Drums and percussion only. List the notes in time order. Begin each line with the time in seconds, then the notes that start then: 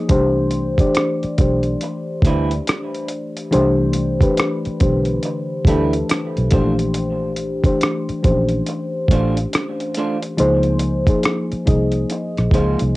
0.09 kick, closed hi-hat
0.51 closed hi-hat
0.78 kick, closed hi-hat
0.95 cross-stick, closed hi-hat
1.23 closed hi-hat
1.38 kick, closed hi-hat
1.63 closed hi-hat
1.81 closed hi-hat
2.22 kick, closed hi-hat
2.51 closed hi-hat
2.67 cross-stick, closed hi-hat
2.94 closed hi-hat
3.08 closed hi-hat
3.37 closed hi-hat
3.53 closed hi-hat
3.93 closed hi-hat
4.21 kick, closed hi-hat
4.37 cross-stick, closed hi-hat
4.65 closed hi-hat
4.80 kick, closed hi-hat
5.05 closed hi-hat
5.23 closed hi-hat
5.65 kick, closed hi-hat
5.93 closed hi-hat
6.09 cross-stick, closed hi-hat
6.37 closed hi-hat
6.51 kick, closed hi-hat
6.79 closed hi-hat
6.94 closed hi-hat
7.36 closed hi-hat
7.64 kick, closed hi-hat
7.81 cross-stick, closed hi-hat
8.09 closed hi-hat
8.24 kick, closed hi-hat
8.49 closed hi-hat
8.66 closed hi-hat
9.08 kick, closed hi-hat
9.37 closed hi-hat
9.53 cross-stick, closed hi-hat
9.80 closed hi-hat
9.94 closed hi-hat
10.22 closed hi-hat
10.38 closed hi-hat
10.63 closed hi-hat
10.79 closed hi-hat
11.07 kick, closed hi-hat
11.23 cross-stick, closed hi-hat
11.52 closed hi-hat
11.67 kick, closed hi-hat
11.92 closed hi-hat
12.10 closed hi-hat
12.37 cross-stick, closed hi-hat
12.51 kick, closed hi-hat
12.79 closed hi-hat